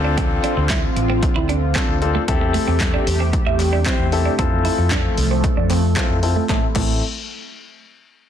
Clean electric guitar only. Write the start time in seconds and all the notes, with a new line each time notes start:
0.04 D4
0.18 C4
0.44 D4
0.57 muted clean electric guitar stroke
0.70 E4
0.97 muted clean electric guitar stroke
1.10 C4
1.23 muted clean electric guitar stroke
1.36 E4
1.49 D4
1.75 C4
1.89 muted clean electric guitar stroke
2.15 A3
2.41 muted clean electric guitar stroke
2.54 A3
2.68 C4
2.94 D4
3.07 muted clean electric guitar stroke
3.20 C4
3.47 E4
3.60 muted clean electric guitar stroke
3.73 D4
3.86 C4
4.12 muted clean electric guitar stroke
4.26 D4
4.39 C4
4.65 E4
4.78 muted clean electric guitar stroke
4.92 D4
5.18 muted clean electric guitar stroke
5.31 C4
5.44 muted clean electric guitar stroke
5.57 D4
5.70 C4
5.97 C4
6.10 muted clean electric guitar stroke
6.36 A3
6.49 A3
6.76 A3